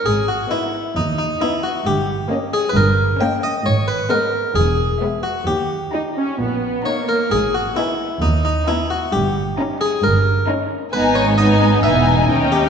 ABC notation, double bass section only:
X:1
M:4/4
L:1/8
Q:1/4=133
K:G#m
V:1 name="Double bass section" clef=bass
G,,,2 z2 D,,2 z2 | =G,,,2 z2 G,,,2 z2 | G,,,2 z2 E,,,2 z2 | D,,2 z2 A,,,2 z2 |
G,,,2 z2 D,,2 z2 | =G,,,2 z2 G,,,2 z2 | G,,,4 E,,,2 D,,2 |]